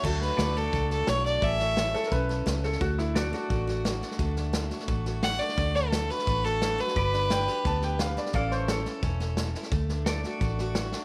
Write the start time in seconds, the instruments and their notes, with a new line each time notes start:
0.03 fingered electric bass D2, steel-string acoustic guitar D3 F#3 A3 D4 F#4, fiddle A4, kick, snare, crash
0.22 steel-string acoustic guitar D4, fiddle B4, snare
0.37 fingered electric bass D2, steel-string acoustic guitar F#3, pedal steel guitar A4 D5, snare, hi-hat pedal
0.57 steel-string acoustic guitar F#4, fiddle A4, snare
0.73 fingered electric bass C#2, steel-string acoustic guitar A2 A3, kick, snare
0.91 steel-string acoustic guitar F#4, fiddle A4, snare
1.07 fingered electric bass B1, steel-string acoustic guitar F#3, fiddle C#5, snare, hi-hat pedal
1.25 steel-string acoustic guitar D4, fiddle D5, snare
1.41 fingered electric bass A1, steel-string acoustic guitar A2 C#4, pedal steel guitar A4 D5, fiddle E5, kick, snare
1.60 steel-string acoustic guitar E4, pedal steel guitar C#5, snare
1.77 steel-string acoustic guitar E3, snare, hi-hat pedal
1.94 upright piano A4, steel-string acoustic guitar A4, snare
2.03 upright piano A#4, snare
2.12 fingered electric bass B1, steel-string acoustic guitar A2 C#4, upright piano B4, kick, snare
2.29 steel-string acoustic guitar A4, snare
2.46 fingered electric bass C#2, steel-string acoustic guitar E3, snare, hi-hat pedal
2.64 steel-string acoustic guitar E4, upright piano A4, snare
2.73 snare
2.81 fingered electric bass D2, steel-string acoustic guitar D3 A3, upright piano F#4, kick, snare
2.98 steel-string acoustic guitar D4, upright piano E4, snare
3.15 steel-string acoustic guitar F#3, upright piano F#4, pedal steel guitar A4 D5, snare, hi-hat pedal
3.33 steel-string acoustic guitar F#4, upright piano F#4, snare
3.50 fingered electric bass A1, steel-string acoustic guitar A2 A3, kick, snare
3.67 steel-string acoustic guitar F#4, snare
3.85 steel-string acoustic guitar F#3, snare, hi-hat pedal
4.02 steel-string acoustic guitar D4, snare
4.11 snare
4.19 fingered electric bass D2, steel-string acoustic guitar D3 A3, kick, snare
4.36 steel-string acoustic guitar D4, snare
4.53 steel-string acoustic guitar F#3, snare, hi-hat pedal
4.71 steel-string acoustic guitar F#4, snare
4.80 snare
4.88 fingered electric bass A1, steel-string acoustic guitar A2 A3, kick, snare
5.05 steel-string acoustic guitar F#4, snare
5.23 steel-string acoustic guitar F#3, fiddle F#5, snare, hi-hat pedal
5.40 steel-string acoustic guitar D4, fiddle D5, snare
5.49 snare
5.58 fingered electric bass D2, steel-string acoustic guitar D3 A3, kick, snare
5.75 steel-string acoustic guitar D4, fiddle A4, snare
5.92 steel-string acoustic guitar F#3, snare, hi-hat pedal
6.10 steel-string acoustic guitar F#4, fiddle B4, snare
6.19 snare
6.27 fingered electric bass A1, steel-string acoustic guitar A2 A3, kick, snare
6.45 steel-string acoustic guitar F#4, fiddle A4, snare
6.62 steel-string acoustic guitar E3, snare, hi-hat pedal
6.78 steel-string acoustic guitar F#3, fiddle B4, snare
6.88 snare
6.96 fingered electric bass G1, steel-string acoustic guitar G2 B3, pedal steel guitar B4 D5, kick, snare
7.14 steel-string acoustic guitar D4, snare
7.30 steel-string acoustic guitar G3, upright piano G5, snare, hi-hat pedal
7.48 steel-string acoustic guitar G4, snare
7.65 fingered electric bass D2, steel-string acoustic guitar D3 B3, upright piano A5, kick, snare
7.82 steel-string acoustic guitar G4, upright piano G5, snare
7.99 steel-string acoustic guitar G3, upright piano F5, snare, hi-hat pedal
8.17 steel-string acoustic guitar D4, upright piano D5, snare
8.26 snare
8.33 fingered electric bass A1, steel-string acoustic guitar A2 E3 C#4 E4 A4, pedal steel guitar A4 D5, upright piano F5, kick, snare
8.51 steel-string acoustic guitar E4, upright piano C5, snare
8.56 pedal steel guitar C#5
8.68 steel-string acoustic guitar E3, upright piano A4, snare, hi-hat pedal
8.85 steel-string acoustic guitar A4, snare
9.02 fingered electric bass E1, steel-string acoustic guitar A2 C#4, kick, snare
9.20 steel-string acoustic guitar A4, snare
9.37 steel-string acoustic guitar E3, snare, hi-hat pedal
9.55 steel-string acoustic guitar E4, snare
9.63 snare
9.71 fingered electric bass D2, steel-string acoustic guitar D3 A3, kick, snare
9.89 steel-string acoustic guitar D4, snare
10.06 steel-string acoustic guitar F#3, pedal steel guitar A4 D5, snare, hi-hat pedal
10.24 steel-string acoustic guitar F#4, snare
10.41 fingered electric bass A1, steel-string acoustic guitar A2 A3, kick, snare
10.58 steel-string acoustic guitar F#4, snare
10.75 steel-string acoustic guitar F#3, snare, hi-hat pedal
10.92 steel-string acoustic guitar D4, snare